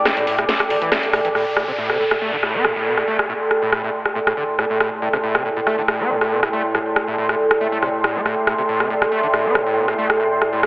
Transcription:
0.00 1.34 A2 medium
0.00 1.34 A4 medium
0.00 1.35 D5 medium
0.00 1.35 G5 medium
0.00 1.37 D6 medium
0.05 cross-stick loud
0.05 snare loud
0.05 closed hi-hat medium
0.17 0.25 A2 loud
0.17 closed hi-hat medium
0.27 0.36 A2 loud
0.27 open hi-hat medium
0.38 0.44 A2 loud
0.38 cross-stick medium
0.38 closed hi-hat medium
0.49 snare loud
0.49 closed hi-hat medium
0.60 cross-stick loud
0.60 closed hi-hat medium
0.70 0.76 A1 loud
0.70 open hi-hat loud
0.82 0.90 E3 medium
0.82 closed hi-hat medium
0.92 0.98 A2 medium
0.92 cross-stick medium
0.92 snare loud
0.92 closed hi-hat medium
1.03 closed hi-hat medium
1.13 1.20 A2 loud
1.13 cross-stick loud
1.13 open hi-hat medium
1.25 1.28 E3 loud
1.25 closed hi-hat medium
1.35 10.67 A2 medium
1.35 1.44 A2 medium
1.35 10.67 A4 medium
1.35 cross-stick medium
1.35 downlifter medium
1.57 1.63 A2 loud
1.57 cross-stick medium
1.68 1.71 C3 loud
1.76 1.91 A2 loud
1.76 10.67 D5 medium
1.81 10.67 C6 medium
1.90 1.98 C3 loud
1.90 cross-stick medium
2.00 2.03 A2 medium
2.11 2.15 A2 loud
2.11 cross-stick medium
2.21 2.31 A3 medium
2.33 2.36 D3 loud
2.37 10.67 G5 medium
2.43 2.56 A2 loud
2.43 cross-stick medium
2.54 2.66 C4 loud
2.64 2.74 A2 loud
2.64 cross-stick medium
2.76 2.87 A2 medium
2.86 2.95 B2 loud
2.97 3.03 A2 loud
2.97 cross-stick medium
3.08 3.17 A3 medium
3.19 cross-stick medium
3.29 3.33 A2 medium
3.51 cross-stick medium
3.62 3.71 A2 loud
3.72 3.82 A2 loud
3.72 cross-stick medium
3.84 3.89 A2 loud
4.06 cross-stick medium
4.15 4.19 A2 medium
4.27 4.33 A2 medium
4.27 cross-stick medium
4.37 4.43 D3 medium
4.59 4.65 A2 loud
4.59 cross-stick medium
4.70 4.79 A2 medium
4.80 4.90 A2 loud
4.80 cross-stick medium
5.02 5.08 A2 loud
5.13 5.17 C3 loud
5.13 cross-stick medium
5.24 5.37 A2 loud
5.35 5.43 C3 loud
5.35 cross-stick medium
5.45 5.49 A2 medium
5.57 5.60 A2 loud
5.67 5.76 A3 medium
5.67 cross-stick medium
5.78 5.81 D3 loud
5.88 6.01 A2 loud
5.88 cross-stick medium
6.00 6.11 C4 loud
6.10 6.19 A2 loud
6.21 6.33 A2 medium
6.21 cross-stick medium
6.31 6.41 B2 loud
6.43 6.48 A2 loud
6.43 cross-stick medium
6.53 6.63 A3 medium
6.75 6.78 A2 medium
6.75 cross-stick medium
6.96 cross-stick medium
7.08 7.16 A2 loud
7.18 7.27 A2 loud
7.29 7.35 A2 medium
7.29 cross-stick medium
7.51 cross-stick medium
7.61 7.67 A3 loud
7.72 7.78 A3 medium
7.82 7.89 C3 loud
7.82 cross-stick medium
8.04 8.17 A2 medium
8.04 cross-stick medium
8.15 8.21 A3 loud
8.25 8.35 A2 loud
8.25 cross-stick medium
8.47 8.53 A2 loud
8.47 cross-stick medium
8.58 8.62 C3 loud
8.69 8.82 A2 loud
8.80 8.89 C3 loud
8.80 cross-stick medium
8.90 8.94 A2 medium
9.02 9.05 A2 loud
9.02 cross-stick medium
9.12 9.21 A3 medium
9.23 9.27 D3 loud
9.33 9.46 A2 loud
9.33 cross-stick medium
9.45 9.57 C4 loud
9.55 9.65 A2 loud
9.55 cross-stick medium
9.66 9.78 A2 medium
9.77 9.86 B2 loud
9.88 9.94 A2 medium
9.88 cross-stick medium
9.98 10.08 A3 medium
10.10 cross-stick medium
10.20 10.24 A2 medium
10.42 cross-stick medium
10.53 10.61 A2 loud
10.63 10.67 A2 loud
10.63 cross-stick medium

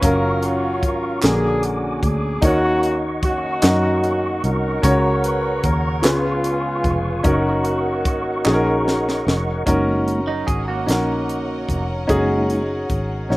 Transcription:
0.00 0.83 F#1 medium
0.00 1.05 F#3 medium
0.00 1.04 C#4 medium
0.00 1.19 F4 medium
0.00 1.20 F5 medium
0.00 1.05 F5 medium
0.00 1.20 C#6 medium
0.00 kick loud
0.00 closed hi-hat medium
0.04 1.20 C#4 medium
0.04 1.06 A#4 medium
0.04 0.44 A#4 medium
0.43 0.83 F#4 medium
0.43 closed hi-hat soft
0.83 1.20 G#1 medium
0.83 1.21 A#4 medium
0.83 kick medium
0.83 closed hi-hat soft
1.22 1.99 A#1 loud
1.22 2.39 A#2 medium
1.22 2.24 D3 medium
1.22 2.40 C#4 medium
1.22 2.40 D4 medium
1.22 2.25 F#4 soft
1.22 2.25 G#4 medium
1.22 2.26 A#4 medium
1.22 2.42 G#5 medium
1.22 2.42 D6 medium
1.22 snare loud
1.22 clap medium
1.22 closed hi-hat medium
1.26 1.64 G#4 medium
1.63 2.04 F#4 medium
1.63 closed hi-hat soft
2.03 2.39 D2 medium
2.03 2.43 G#4 medium
2.03 kick medium
2.03 closed hi-hat soft
2.42 3.23 D#2 medium
2.42 3.59 D#3 medium
2.42 3.44 D#4 medium
2.42 3.45 F#4 medium
2.42 3.45 A#4 medium
2.42 3.46 C#5 medium
2.42 4.82 D#5 medium
2.42 6.01 F#5 medium
2.42 4.82 C#6 medium
2.42 kick loud
2.42 closed hi-hat medium
2.46 3.07 A#3 medium
2.46 3.07 C#4 medium
2.46 2.97 F#4 medium
2.83 closed hi-hat soft
3.23 3.60 F2 medium
3.23 4.40 A#3 medium
3.23 4.40 C#4 medium
3.23 4.40 F#4 medium
3.23 kick medium
3.23 closed hi-hat soft
3.62 4.39 F#2 loud
3.62 4.65 D#4 medium
3.62 4.65 F#4 medium
3.62 4.66 A#4 medium
3.62 4.66 D#5 medium
3.62 snare loud
3.62 clap loud
3.62 closed hi-hat medium
4.04 closed hi-hat soft
4.44 4.80 C2 medium
4.44 5.60 C#4 medium
4.44 5.20 F#4 medium
4.44 5.60 A#4 medium
4.44 closed hi-hat soft
4.82 5.60 C#2 loud
4.82 6.00 C#3 medium
4.82 5.85 C#4 medium
4.82 5.86 F#4 medium
4.82 6.03 C#5 medium
4.82 5.87 C#5 medium
4.82 5.86 A#5 medium
4.82 9.62 C#6 medium
4.82 kick loud
4.82 closed hi-hat medium
5.24 5.64 B4 medium
5.24 closed hi-hat soft
5.64 6.05 D#2 medium
5.64 6.04 A#4 medium
5.64 kick medium
5.64 closed hi-hat soft
6.01 6.81 C#2 loud
6.01 7.20 C#3 medium
6.01 7.21 G#3 medium
6.01 7.05 C#4 medium
6.01 7.06 F4 medium
6.01 7.25 F4 medium
6.01 7.06 G#4 medium
6.01 7.24 B4 medium
6.01 7.07 B4 medium
6.01 7.24 F5 medium
6.01 7.24 G#5 medium
6.01 snare loud
6.01 clap medium
6.01 closed hi-hat medium
6.06 7.22 B3 medium
6.44 closed hi-hat soft
6.84 7.22 F1 medium
6.84 kick medium
6.84 closed hi-hat soft
7.23 8.06 F#1 medium
7.23 8.27 C#4 medium
7.23 8.27 D#4 medium
7.23 8.28 F#4 medium
7.23 8.28 A#4 medium
7.23 9.65 A#4 medium
7.23 9.64 D#5 medium
7.23 9.65 F#5 medium
7.23 kick loud
7.23 closed hi-hat medium
7.27 9.24 A#3 medium
7.27 9.24 D#4 medium
7.27 9.24 F#4 medium
7.65 closed hi-hat soft
8.05 8.43 G#1 medium
8.05 kick loud
8.05 closed hi-hat soft
8.45 9.22 A#1 medium
8.45 9.48 C#4 medium
8.45 9.48 D#4 medium
8.45 9.49 F#4 medium
8.45 8.53 G#4 medium
8.45 snare medium
8.45 clap loud
8.53 9.52 A#4 medium
8.88 snare medium
9.09 snare medium
9.27 9.63 F1 medium
9.27 snare medium
9.66 10.44 F#1 medium
9.66 10.20 G#3 soft
9.66 10.21 A#3 soft
9.66 10.69 C#4 medium
9.66 10.70 D#4 medium
9.66 10.21 D#4 medium
9.66 10.70 F#4 medium
9.66 10.70 A#4 medium
9.66 13.37 A#4 medium
9.66 13.37 C#5 medium
9.66 13.37 D#5 medium
9.66 13.37 F#5 medium
9.66 kick loud
9.66 closed hi-hat medium
10.08 closed hi-hat soft
10.27 10.47 F#3 soft
10.27 10.46 D#4 medium
10.47 10.85 G#1 medium
10.47 10.66 G#4 medium
10.47 kick medium
10.47 closed hi-hat soft
10.68 11.85 A#3 medium
10.68 11.85 F#4 medium
10.86 11.64 A#1 medium
10.86 11.90 C#4 medium
10.86 11.90 D#4 medium
10.86 11.91 F#4 medium
10.86 11.91 A#4 medium
10.86 closed hi-hat medium
10.91 snare medium
11.29 closed hi-hat soft
11.69 12.06 F1 medium
11.69 kick medium
11.69 closed hi-hat soft
12.07 12.86 F#1 medium
12.07 12.62 G#3 soft
12.07 12.62 A#3 soft
12.07 13.11 C#4 medium
12.07 13.11 D#4 medium
12.07 12.63 D#4 medium
12.07 13.12 F#4 medium
12.07 13.12 G#4 medium
12.07 kick loud
12.07 closed hi-hat medium
12.50 closed hi-hat soft
12.90 13.27 G#1 medium
12.90 kick medium
12.90 closed hi-hat soft
13.29 13.37 A#1 medium
13.29 13.37 C#4 medium
13.29 13.37 D#4 medium
13.29 13.37 F#4 medium
13.29 13.37 C#5 medium
13.29 snare soft

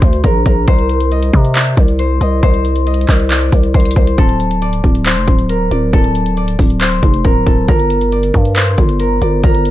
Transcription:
0.00 0.23 D2 loud
0.00 0.23 A#4 loud
0.00 0.67 C5 medium
0.00 1.18 D5 medium
0.00 kick loud
0.00 closed hi-hat medium
0.13 closed hi-hat medium
0.24 0.45 A#1 loud
0.24 0.45 A#4 medium
0.24 kick medium
0.24 closed hi-hat medium
0.46 0.67 A#1 loud
0.46 2.58 A#4 medium
0.46 kick medium
0.46 closed hi-hat medium
0.68 1.31 C2 loud
0.68 1.99 C5 loud
0.68 kick loud
0.68 closed hi-hat medium
0.79 closed hi-hat soft
0.89 closed hi-hat medium
1.00 closed hi-hat medium
1.11 1.61 D#5 medium
1.11 closed hi-hat soft
1.22 closed hi-hat medium
1.33 1.75 C3 loud
1.33 kick medium
1.45 closed hi-hat medium
1.55 2.27 D5 medium
1.55 clap loud
1.55 closed hi-hat medium
1.66 closed hi-hat medium
1.77 2.19 C2 loud
1.77 kick loud
1.77 closed hi-hat medium
1.88 closed hi-hat medium
1.99 2.42 C5 medium
1.99 closed hi-hat medium
2.21 2.42 C2 loud
2.21 2.86 D#5 medium
2.21 closed hi-hat medium
2.43 3.06 C2 loud
2.43 3.74 C5 loud
2.43 kick loud
2.43 closed hi-hat medium
2.54 closed hi-hat soft
2.65 closed hi-hat medium
2.76 closed hi-hat medium
2.87 3.37 D#5 medium
2.87 closed hi-hat soft
2.94 closed hi-hat medium
3.01 closed hi-hat medium
3.09 3.51 C2 loud
3.09 kick medium
3.09 clap medium
3.09 open hi-hat medium
3.20 closed hi-hat medium
3.31 4.62 D5 medium
3.31 clap loud
3.31 closed hi-hat medium
3.41 closed hi-hat medium
3.52 3.73 C2 loud
3.52 kick loud
3.52 closed hi-hat medium
3.63 closed hi-hat medium
3.74 3.95 C2 loud
3.74 3.96 C5 medium
3.74 kick medium
3.74 closed hi-hat medium
3.80 closed hi-hat medium
3.85 closed hi-hat medium
3.91 closed hi-hat medium
3.96 4.17 C2 loud
3.96 5.05 C5 medium
3.96 kick loud
3.96 closed hi-hat soft
4.07 closed hi-hat medium
4.18 4.81 D1 loud
4.18 5.55 A4 loud
4.18 kick loud
4.18 closed hi-hat medium
4.29 closed hi-hat soft
4.40 closed hi-hat medium
4.51 closed hi-hat medium
4.62 5.71 D5 medium
4.62 closed hi-hat soft
4.73 closed hi-hat medium
4.84 5.18 D1 loud
4.84 kick medium
4.95 closed hi-hat medium
5.06 6.80 C5 medium
5.06 clap loud
5.06 closed hi-hat medium
5.17 5.27 F1 loud
5.17 closed hi-hat medium
5.28 5.70 D1 loud
5.28 kick loud
5.28 closed hi-hat medium
5.39 closed hi-hat medium
5.49 5.99 A#4 medium
5.49 closed hi-hat medium
5.71 5.92 D1 loud
5.71 6.37 D5 medium
5.71 closed hi-hat medium
5.93 6.56 D1 loud
5.93 7.31 A4 loud
5.93 kick loud
5.93 closed hi-hat medium
6.04 closed hi-hat soft
6.15 closed hi-hat medium
6.26 closed hi-hat medium
6.37 8.12 D5 medium
6.37 closed hi-hat soft
6.48 closed hi-hat medium
6.59 7.01 D1 loud
6.59 kick medium
6.59 open hi-hat medium
6.70 closed hi-hat medium
6.81 8.56 C5 medium
6.81 clap loud
6.81 closed hi-hat medium
6.92 closed hi-hat medium
7.03 7.24 F1 loud
7.03 kick loud
7.03 closed hi-hat medium
7.14 closed hi-hat medium
7.25 7.46 D1 loud
7.25 7.52 A#4 medium
7.25 kick medium
7.25 closed hi-hat medium
7.46 7.68 D1 loud
7.46 7.74 A4 medium
7.46 kick loud
7.46 closed hi-hat medium
7.68 8.32 G1 loud
7.68 8.99 A#4 loud
7.68 kick loud
7.68 closed hi-hat medium
7.79 closed hi-hat soft
7.90 closed hi-hat medium
8.01 closed hi-hat medium
8.12 9.21 D5 medium
8.12 closed hi-hat soft
8.23 closed hi-hat medium
8.34 8.76 G2 loud
8.34 kick medium
8.45 closed hi-hat medium
8.56 9.71 C5 medium
8.56 clap loud
8.56 closed hi-hat medium
8.67 closed hi-hat medium
8.78 9.20 G1 loud
8.78 kick loud
8.78 closed hi-hat medium
8.89 closed hi-hat medium
9.00 9.43 A#4 medium
9.00 closed hi-hat medium
9.22 9.43 G1 loud
9.22 9.71 D5 medium
9.22 closed hi-hat medium
9.43 9.71 G1 loud
9.43 9.71 A#4 loud
9.43 kick loud
9.43 closed hi-hat medium
9.55 closed hi-hat soft
9.65 closed hi-hat medium

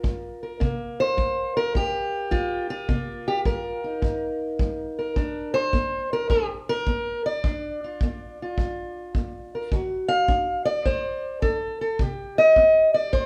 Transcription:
0.00 0.57 G3 medium
0.00 0.60 A#3 soft
0.00 0.59 F4 soft
0.00 0.42 A#4 medium
0.04 kick medium
0.43 0.63 A#4 soft
0.60 1.14 C3 medium
0.60 2.89 A#3 soft
0.60 kick medium
1.00 1.56 C5 loud
1.17 1.71 G3 medium
1.17 kick medium
1.57 1.75 A#4 loud
1.74 2.28 G2 medium
1.74 2.90 G4 loud
1.74 kick medium
2.31 2.85 G3 medium
2.31 2.69 F4 medium
2.31 kick medium
2.70 3.84 F4 medium
2.89 3.42 C3 medium
2.89 5.16 A#3 soft
2.89 kick medium
3.28 3.39 G4 medium
3.45 3.99 G3 medium
3.45 4.97 A#4 medium
3.45 kick medium
3.84 5.14 D#4 soft
4.02 4.55 G2 medium
4.02 kick medium
4.59 5.13 G3 medium
4.59 kick medium
4.99 5.53 A#4 soft
5.16 5.69 G2 medium
5.16 7.45 D4 soft
5.16 kick medium
5.54 6.11 C5 loud
5.73 6.27 A#3 medium
5.73 kick medium
6.13 6.30 A#4 loud
6.30 6.83 G2 medium
6.30 6.46 G4 loud
6.30 kick medium
6.69 7.25 A#4 loud
6.87 7.41 A#3 medium
6.87 kick medium
7.26 9.53 D5 medium
7.44 7.98 G2 medium
7.44 9.70 D4 soft
7.44 kick medium
7.84 8.42 F4 soft
8.01 8.55 A#3 medium
8.01 kick medium
8.42 9.71 F4 soft
8.58 9.12 G2 medium
8.58 kick medium
9.15 9.69 A#3 medium
9.15 kick medium
9.55 9.71 A#4 soft
9.72 10.26 D3 medium
9.72 11.98 F#4 soft
9.72 kick medium
10.08 10.65 F5 loud
10.28 10.82 D4 medium
10.28 kick medium
10.65 11.42 D5 loud
10.86 11.40 A3 medium
10.86 11.42 C5 medium
10.86 kick medium
11.42 11.97 D4 medium
11.42 11.80 A4 medium
11.42 kick medium
11.81 12.00 A4 medium
11.99 12.54 C3 medium
11.99 13.26 G4 soft
11.99 kick medium
12.38 12.94 D#5 loud
12.56 13.10 C4 medium
12.56 kick medium
12.94 13.26 D5 loud
13.13 13.26 G2 medium
13.13 13.26 C5 medium
13.13 kick medium

